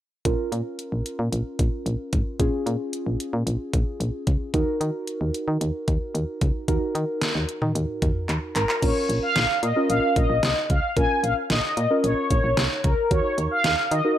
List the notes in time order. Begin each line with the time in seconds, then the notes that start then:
0.25 A#1 C#4 F4 A#4, kick, closed hi-hat
0.52 A#2, closed hi-hat
0.79 closed hi-hat
0.92 A#1
1.06 closed hi-hat
1.19 A#2
1.32 A#1, closed hi-hat
1.59 A#1, kick, closed hi-hat
1.86 A#1, closed hi-hat
2.13 G#1, kick, closed hi-hat
2.40 A#1 C#4 F4 G#4, kick, closed hi-hat
2.66 A#2, closed hi-hat
2.93 closed hi-hat
3.06 A#1
3.20 closed hi-hat
3.33 A#2
3.47 A#1, closed hi-hat
3.73 A#1, kick, closed hi-hat
4.00 A#1, closed hi-hat
4.27 C#2, kick, closed hi-hat
4.54 D#2 D#4 F#4 A#4, kick, closed hi-hat
4.81 D#3, closed hi-hat
5.07 closed hi-hat
5.21 D#2
5.34 closed hi-hat
5.48 D#3
5.61 D#2, closed hi-hat
5.88 D#2, kick, closed hi-hat
6.15 D#2, closed hi-hat
6.41 C#2, kick, closed hi-hat
6.68 D#2 D#4 F#4 A#4, kick, closed hi-hat
6.95 D#3, closed hi-hat
7.21 snare, closed hi-hat
7.35 D#2
7.49 closed hi-hat
7.62 D#3, mid tom
7.75 D#2, closed hi-hat
8.02 D#2, kick, closed hi-hat, mid tom
8.29 D#2, clap, closed hi-hat
8.56 G#1 A#4, clap, closed hi-hat
8.69 clap
8.82 A#1 C#4 F4 A#4 C#5, kick, closed hi-hat, crash
9.09 A#1, closed hi-hat
9.23 F5
9.36 A#1, snare, closed hi-hat
9.63 A#2 F4 A#4 D#5, closed hi-hat
9.76 C#4 F4 A#4
9.89 A#1 F5, closed hi-hat
10.16 A#1 D#5, kick, closed hi-hat
10.30 A#1
10.43 C2, snare, closed hi-hat
10.70 C#2 F5, kick, closed hi-hat
10.96 A#1 C#4 F4 A#4 G#5, kick, closed hi-hat
11.23 A#1 F5, closed hi-hat
11.50 A#1 D#5, snare, closed hi-hat
11.77 A#2 F4 A#4, closed hi-hat
11.90 C#4 F4 A#4
12.04 A#1 C#5, closed hi-hat
12.31 A#1, kick, closed hi-hat
12.44 A#1
12.57 C2, snare, closed hi-hat
12.84 C#2 A#4, kick, closed hi-hat
13.11 D#2 D#4 F#4 A#4 C#5, kick, closed hi-hat
13.38 D#2, closed hi-hat
13.51 F5
13.64 D#2, snare, closed hi-hat
13.91 D#3 F#4 A#4 D#5, closed hi-hat
14.05 D#4 F#4 A#4